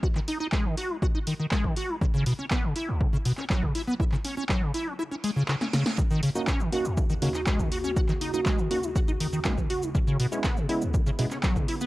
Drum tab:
HH |--o---o---o---o-|--o---o---o---o-|--o---o---o---o-|--o---o---o---o-|
SH |----------------|----------------|----------------|xx-xxx-xxx-xxx-x|
CP |-x--x-------x---|----x------xx---|-x--x-------x---|----x------xx---|
SD |----------------|----------------|-------------ooo|----------------|
BD |o---o---o---oo--|o---o---o---oo--|o---o-----------|o---o---o---oo--|

HH |--o---o---o---o-|--o---o---o---o-|
SH |xx-xxx-xxx-xxx-x|xx-xxx-xxx-xxx-x|
CP |-x--x-------x---|----x------xx---|
SD |----------------|----------------|
BD |o---o---o---oo--|o---o---o---oo--|